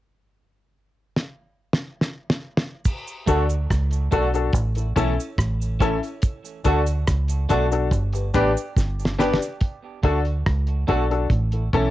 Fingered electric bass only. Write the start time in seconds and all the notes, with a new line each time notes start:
3.28 D2
3.71 C#2
4.13 B1
4.54 A1
4.97 B1
5.38 A1
6.65 D2
7.08 C#2
7.51 B1
7.92 G1
8.35 A1
8.77 G1
10.03 D2
10.47 C#2
10.89 B1
11.30 A1
11.73 B1